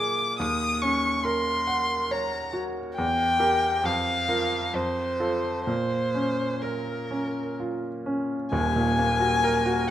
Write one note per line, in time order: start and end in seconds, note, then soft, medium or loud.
0.00 0.35 A#2 soft
0.00 0.42 D4 soft
0.00 0.39 G#4 soft
0.00 0.41 A#4 soft
0.00 0.21 D5 soft
0.00 0.41 G#5 soft
0.00 0.37 D6 medium
0.39 2.93 D#2 medium
0.39 0.83 D#6 medium
0.82 1.51 C#4 soft
0.82 1.25 C#6 medium
1.24 1.94 A#4 soft
1.24 2.13 C6 medium
1.67 2.36 F#5 soft
2.11 2.80 C#5 soft
2.11 2.54 A#5 medium
2.53 2.96 F#4 soft
2.96 3.82 E2 soft
2.96 3.87 G5 medium
3.39 3.80 G4 soft
3.39 3.80 A#4 soft
3.83 4.71 F2 medium
3.83 4.77 F5 medium
4.29 4.70 F4 soft
4.29 4.70 A#4 soft
4.74 5.64 F2 soft
4.74 5.65 C5 medium
5.20 5.63 F4 soft
5.20 5.63 A4 soft
5.66 8.48 A#2 soft
5.66 6.63 C5 medium
6.15 6.91 C#4 soft
6.62 7.57 A#4 soft
6.62 7.38 A#4 soft
7.11 7.86 C#4 soft
7.60 8.35 F4 soft
8.06 8.53 C#4 soft
8.52 9.90 D#1 medium
8.52 9.90 D#2 medium
8.52 9.90 G#5 medium
8.76 9.12 A#2 soft
8.98 9.34 A#3 soft
9.20 9.56 F#4 soft
9.44 9.79 A#4 medium
9.66 9.90 F#4 medium